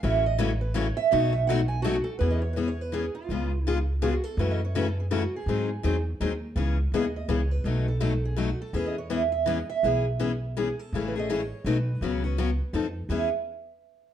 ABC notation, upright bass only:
X:1
M:3/4
L:1/8
Q:"Swing" 1/4=165
K:E
V:1 name="Upright bass" clef=bass
A,,,6 | B,,,6 | E,,6 | C,,6 |
F,,6 | G,,2 E,,2 D,,2 | C,,2 D,,2 C,,2 | B,,,6 |
E,,6 | B,,,6 | A,,,4 B,,,2 | C,,4 =F,,2 |
E,, z4 z |]